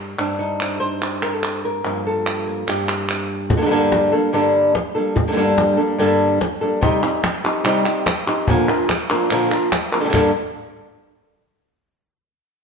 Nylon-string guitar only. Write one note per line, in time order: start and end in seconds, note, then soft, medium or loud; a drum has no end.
0.00 0.17 G2 medium
0.00 0.16 G4 soft
0.00 0.17 A#4 soft
0.18 1.83 G2 medium
0.18 0.59 C4 soft
0.18 0.81 D4 loud
0.39 1.22 D#4 medium
0.61 1.83 C4 medium
0.80 1.63 C5 loud
1.23 1.33 A#4 loud
1.33 1.64 A4 loud
1.65 2.06 A#4 medium
1.84 2.66 G2 medium
1.84 2.68 F3 medium
1.84 2.46 A#3 soft
2.07 2.68 A4 medium
2.47 3.56 A#3 soft
2.67 3.49 G2 medium
2.67 3.51 G4 medium
3.50 muted nylon-string guitar stroke medium
3.57 3.60 D3 medium
3.57 3.61 G3 medium
3.57 3.61 A#3 medium
3.57 3.61 D4 medium
3.57 3.62 A4 medium
3.61 3.64 D3 medium
3.61 3.65 G3 medium
3.61 3.65 A#3 medium
3.61 3.65 D4 medium
3.61 3.66 A4 medium
3.66 3.70 D3 medium
3.66 3.70 G3 medium
3.66 3.70 A#3 medium
3.66 3.70 D4 medium
3.66 3.70 A4 medium
3.70 4.12 G2 medium
3.70 4.12 D3 medium
3.70 4.12 G3 loud
3.70 4.12 A#3 medium
3.70 4.11 D4 loud
3.70 4.11 A4 medium
4.12 4.32 G3 medium
4.12 4.33 A#3 medium
4.12 4.33 D4 medium
4.12 4.32 A4 medium
4.33 4.73 G2 loud
4.33 4.74 D3 loud
4.33 4.74 G3 loud
4.33 4.74 A#3 loud
4.33 4.74 D4 loud
4.33 4.74 A4 loud
4.74 muted nylon-string guitar stroke medium
4.95 5.16 G3 medium
4.95 5.16 A#3 soft
4.95 5.16 D4 medium
4.95 5.15 A4 medium
5.16 muted nylon-string guitar stroke medium
5.27 5.31 D3 medium
5.27 5.31 G3 medium
5.27 5.31 A#3 medium
5.27 5.31 D4 medium
5.27 5.32 A4 medium
5.32 5.35 D3 medium
5.32 5.36 G3 medium
5.32 5.36 A#3 medium
5.32 5.36 D4 medium
5.32 5.36 A4 medium
5.36 5.77 G2 medium
5.36 5.77 D3 medium
5.36 5.78 G3 medium
5.36 5.77 A#3 loud
5.36 5.77 D4 loud
5.36 5.76 A4 loud
5.77 5.98 G3 medium
5.77 5.98 A#3 medium
5.77 5.98 D4 medium
5.77 5.98 A4 medium
5.98 6.39 G2 loud
5.98 6.40 D3 medium
5.98 6.39 G3 loud
5.98 6.40 A#3 loud
5.98 6.40 D4 loud
5.98 6.40 A4 loud
6.40 muted nylon-string guitar stroke medium
6.61 6.81 G3 soft
6.61 6.82 A#3 soft
6.61 6.82 D4 medium
6.61 6.81 A4 medium
6.81 7.02 C3 loud
6.81 7.02 G3 loud
6.81 7.02 C4 medium
6.81 7.02 D#4 medium
6.81 7.01 G4 loud
7.03 7.22 C4 soft
7.03 7.23 D#4 medium
7.03 7.23 G4 medium
7.23 muted nylon-string guitar stroke medium
7.44 7.64 C4 medium
7.44 7.65 D#4 medium
7.44 7.64 G4 medium
7.64 7.84 C3 medium
7.64 7.85 G3 loud
7.64 7.85 C4 loud
7.64 7.85 D#4 loud
7.64 7.84 G4 loud
7.86 8.05 C4 soft
7.86 8.06 D#4 medium
7.86 8.06 G4 medium
8.06 muted nylon-string guitar stroke medium
8.27 8.48 C4 medium
8.27 8.47 D#4 medium
8.27 8.47 G4 medium
8.48 8.68 A#2 medium
8.48 8.68 D3 medium
8.48 8.68 F3 loud
8.48 8.68 A#3 loud
8.48 8.68 D4 medium
8.48 8.67 A#4 loud
8.69 8.88 F3 medium
8.69 8.89 A#3 medium
8.69 8.89 D4 medium
8.69 8.88 A#4 medium
8.89 muted nylon-string guitar stroke medium
9.10 9.30 F3 medium
9.10 9.30 A#3 medium
9.10 9.30 D4 medium
9.10 9.30 A#4 medium
9.30 9.50 A#2 loud
9.30 9.51 D3 medium
9.30 9.51 F3 medium
9.30 9.51 A#3 loud
9.30 9.51 D4 loud
9.30 9.49 A#4 loud
9.51 9.71 F3 medium
9.51 9.71 A#3 soft
9.51 9.71 D4 medium
9.51 9.71 A#4 medium
9.72 muted nylon-string guitar stroke medium
9.92 10.00 F3 medium
9.92 9.99 A#3 medium
9.92 9.99 D4 soft
9.92 10.01 A#4 medium
10.00 10.03 D3 medium
10.00 10.03 G3 medium
10.00 10.04 A#3 medium
10.00 10.04 D4 medium
10.00 10.04 A4 medium
10.04 10.08 D3 medium
10.04 10.08 G3 medium
10.04 10.08 A#3 medium
10.04 10.09 D4 medium
10.04 10.09 A4 medium
10.09 10.12 D3 medium
10.09 10.13 G3 medium
10.09 10.13 A#3 medium
10.09 10.13 D4 medium
10.09 10.13 A4 medium
10.13 10.30 G2 medium
10.13 10.30 D3 loud
10.13 10.30 G3 loud
10.13 10.30 A#3 loud
10.13 10.30 D4 loud
10.13 10.31 A4 loud